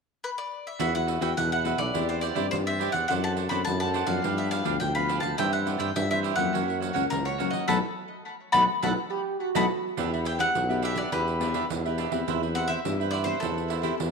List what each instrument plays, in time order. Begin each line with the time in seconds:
0.24 mandolin B4
0.38 mandolin D5
0.67 mandolin E5
0.79 tuba E2, nylon-string guitar E3 B3 E4 F#4, cavaquinho F#4 B4 E5 F#5, mandolin E5, pandeiro
0.95 nylon-string guitar B3 E4 F#4, cavaquinho B4 E5 F#5, mandolin F#5, pandeiro
1.07 cavaquinho F#4 B4 E5 F#5, pandeiro
1.21 tuba E2, nylon-string guitar B3 E4 F#4, cavaquinho F#4 B4 E5 F#5, mandolin G5, pandeiro
1.37 tuba E2, nylon-string guitar B2, mandolin F#5, pandeiro
1.52 cavaquinho B4 E5 F#5, mandolin F#5, pandeiro
1.64 nylon-string guitar B3 E4 F#4, cavaquinho F#4 B4 E5 F#5, pandeiro
1.78 tuba B1, mandolin D5, pandeiro
1.94 tuba E2, nylon-string guitar E3 C4 D4 G4, cavaquinho E4 G4 C5 D5, pandeiro
2.09 mandolin C5, pandeiro
2.21 cavaquinho E4 G4 C5 D5, mandolin D5, pandeiro
2.35 tuba G2, nylon-string guitar C4 D4 G4, cavaquinho E4 G4 C5 D5, pandeiro
2.51 tuba G2, nylon-string guitar E3, mandolin C5, pandeiro
2.66 cavaquinho G4 C5 D5, mandolin E5, pandeiro
2.79 nylon-string guitar C4 D4 G4, cavaquinho E4 G4 C5 D5, pandeiro
2.92 tuba E2, cavaquinho G4 C5, mandolin F#5, pandeiro
3.08 tuba F#2, nylon-string guitar F#3 C4 D4 A4, cavaquinho D4 C5 D5 F#5, mandolin F#5, pandeiro
3.24 cavaquinho C5 D5 F#5, mandolin A5, pandeiro
3.36 cavaquinho D4 C5 D5 F#5, pandeiro
3.49 tuba F#2, nylon-string guitar C4 D4 A4, cavaquinho D4 C5 D5 F#5, mandolin B5, pandeiro
3.65 tuba F#2, nylon-string guitar F#3, mandolin A5, pandeiro
3.80 nylon-string guitar C4 D4 A4, cavaquinho C5 D5 F#5, mandolin A5, pandeiro
3.94 cavaquinho D4 C5 D5 F#5, pandeiro
4.07 tuba F#2, nylon-string guitar F3 B3 D4, mandolin F5, pandeiro
4.24 nylon-string guitar G2, tuba G2, cavaquinho D4 G4 B4 F5, pandeiro
4.38 mandolin E5, pandeiro
4.51 cavaquinho D4 G4 B4 F5, mandolin F5, pandeiro
4.65 tuba D2, nylon-string guitar F3 B3 D4, cavaquinho D4 G4 B4 F5, pandeiro
4.80 tuba D2, nylon-string guitar D3, mandolin G5, pandeiro
4.95 nylon-string guitar F3 B3 D4, cavaquinho G4 B4 F5, mandolin B5, pandeiro
5.09 cavaquinho D4 G4 B4 F5, pandeiro
5.20 tuba D2, cavaquinho G4 B4 F5, mandolin A5, pandeiro
5.38 tuba G2, nylon-string guitar G2 E3 C4 E4, cavaquinho E4 G4 C5 E5, mandolin G5, pandeiro
5.53 cavaquinho G4 C5 E5, mandolin F#5, pandeiro
5.66 nylon-string guitar E3 C4 E4, cavaquinho E4 G4 C5 E5, pandeiro
5.79 tuba G2, cavaquinho E4 G4 C5 E5, mandolin G5, pandeiro
5.96 tuba G2, nylon-string guitar G2, mandolin E5, pandeiro
6.11 nylon-string guitar E3 C4 E4, cavaquinho G4 C5 E5, mandolin E5, pandeiro
6.23 cavaquinho E4 G4 C5 E5, pandeiro
6.36 tuba F2, nylon-string guitar F#3 A#3 C#4, mandolin F#5, pandeiro
6.53 tuba F#2, nylon-string guitar F#2, cavaquinho F#4 A#4 C#5 F#5, pandeiro
6.70 pandeiro
6.80 cavaquinho F#4 A#4 C#5 F#5, pandeiro
6.94 tuba C#2, nylon-string guitar F#3 A#3 C#4, cavaquinho F#4 A#4 C#5 F#5, pandeiro
7.10 tuba C#2, nylon-string guitar C#3, mandolin A#4, pandeiro
7.25 cavaquinho A#4 C#5 F#5, mandolin C#5, pandeiro
7.38 nylon-string guitar F#3 A#3 C#4, cavaquinho F#4 A#4 C#5 F#5, pandeiro
7.50 cavaquinho A#4 C#5 F#5, mandolin D#5, pandeiro
7.68 tuba B1, nylon-string guitar F#3 A3 B3, cavaquinho A4 B4 D#5, mandolin F#5 A5 B5, pandeiro
8.52 tuba B1, nylon-string guitar F#3 A3 B3, cavaquinho A4 B4 D#5, mandolin F#5 A5 B5, pandeiro
8.82 tuba B1, nylon-string guitar F#3 A3 B3, cavaquinho A4 B4 D#5, mandolin F#5 A5 B5, pandeiro
9.11 trombone G4
9.40 trombone F#4
9.55 tuba B1, nylon-string guitar F#3 A3 B3, cavaquinho A4 B4 D#5, mandolin F#5 A5 B5, pandeiro
9.97 tuba E2, nylon-string guitar E3 B3 D4 G4, cavaquinho D4 G4 B4 E5, pandeiro
10.12 cavaquinho G4 B4 E5, pandeiro
10.24 cavaquinho D4 G4 B4 E5, mandolin G5, pandeiro
10.38 nylon-string guitar B3 D4 G4, cavaquinho D4 G4 B4 E5, mandolin F#5, pandeiro
10.55 tuba B1, nylon-string guitar B2, pandeiro
10.69 nylon-string guitar B3 D4 G4, cavaquinho G4 B4 E5, pandeiro
10.82 cavaquinho D4 G4 B4 E5, mandolin E5, pandeiro
10.96 mandolin D5, pandeiro
11.12 tuba E2, nylon-string guitar E3 B3 D4 G4, cavaquinho D4 G4 B4 E5, mandolin B4, pandeiro
11.28 pandeiro
11.40 nylon-string guitar B3 D4 G4, cavaquinho D4 G4 B4 E5, pandeiro
11.54 cavaquinho D4 G4 B4 E5, pandeiro
11.70 tuba E2, nylon-string guitar B2, pandeiro
11.85 nylon-string guitar B3 D4 G4, cavaquinho G4 B4 E5, pandeiro
11.98 cavaquinho D4 G4 B4 E5, pandeiro
12.11 tuba E2, nylon-string guitar B3 C4 G4, cavaquinho G4 B4 E5, pandeiro
12.27 tuba E2, nylon-string guitar E3, cavaquinho E4 B4 C5 E5, pandeiro
12.42 cavaquinho B4 C5 E5, pandeiro
12.54 nylon-string guitar B3 C4 G4, cavaquinho E4 B4 C5 E5, mandolin F#5, pandeiro
12.68 cavaquinho E4 B4 C5 E5, mandolin E5, pandeiro
12.85 tuba G2, nylon-string guitar E3 B3 C4 G4, pandeiro
13.00 cavaquinho B4 C5 E5, pandeiro
13.11 cavaquinho E4 B4 C5 E5, mandolin D5, pandeiro
13.24 nylon-string guitar B3 C4 G4, mandolin C5, pandeiro
13.40 tuba E2, nylon-string guitar E3 B3 C4 G4, cavaquinho E4 B4 C5, mandolin A4, pandeiro
13.44 cavaquinho E5
13.58 pandeiro
13.70 cavaquinho E4 B4 C5 E5, pandeiro
13.83 nylon-string guitar B3 C4 G4, cavaquinho E4 B4 C5 E5, pandeiro
13.99 tuba E2, nylon-string guitar E3, pandeiro